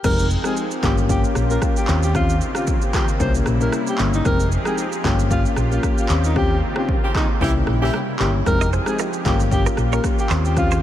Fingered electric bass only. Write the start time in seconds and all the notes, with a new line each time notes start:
0.04 F1
0.83 G1
1.36 A#1
1.89 D#2
3.20 C2
3.47 A#1
3.99 G1
4.25 F1
5.05 G1
5.57 A#1
6.10 D#2
7.41 C2
7.68 A#1
8.20 G1
8.46 F1
9.25 G1
9.78 A#1
10.30 D#2